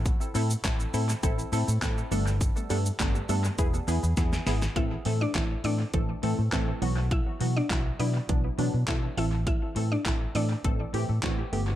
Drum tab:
HH |x-o-x-o-x-o-x-o-|x-o-x-o-x-o-x-o-|x-o-x-o-x-o-x-o-|x-o-x-o-x-o-x-o-|
SH |xxxxxxxxxxxxxxxx|xxxxxxxxxxxxxxxx|----------------|----------------|
CP |----x-------x---|----x-----------|----x-------x---|----x-------x---|
SD |----o-------o---|----o-------oooo|----o-------o---|----o-------o---|
BD |o---o---o---o---|o---o---o---o---|o---o---o---o---|o---o---o---o---|

HH |x-o-x-o-x-o-x-o-|
SH |----------------|
CP |----x-------x---|
SD |----o-------o---|
BD |o---o---o---o---|